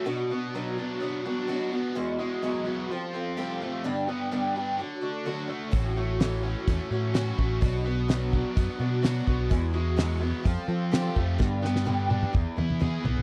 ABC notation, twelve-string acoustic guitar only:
X:1
M:4/4
L:1/8
Q:1/4=127
K:Bdor
V:1 name="Twelve-string acoustic guitar"
[B,,F,B,DF] [B,DF] [B,,F,B,DF] [B,DF] [F,B,DF] [B,DF] [B,,F,B,DF] [B,DF] | [E,G,B,EF] [B,EF] [E,G,B,EF] [B,EF] [=G,=C=FA] [CFA] [=F,G,CFA] [CFA] | [=G,,D,=G,B,D=G] [G,B,DG] [G,,D,G,B,DG] [G,B,DG] [F,A,DF] [A,DF] [D,F,A,DF] [A,DF] | [A,,E,F,A,CF] [F,A,CF] [A,,E,F,A,CF] [F,A,CF] [F,A,CF] [F,A,CF] [A,,E,F,A,CF] [F,A,CF] |
[B,,F,B,DF] [B,DF] [B,,F,B,DF] [B,DF] [F,B,DF] [B,DF] [B,,F,B,DF] [B,DF] | [E,G,B,EF] [B,EF] [E,G,B,EF] [B,EF] [=G,=C=FA] [CFA] [=F,G,CFA] [CFA] | [=G,,D,=G,B,D=G] [G,B,DG] [G,,D,G,B,DG] [G,B,DG] [E,B,E^G] [B,EG] [E,B,EG] [B,EG] |]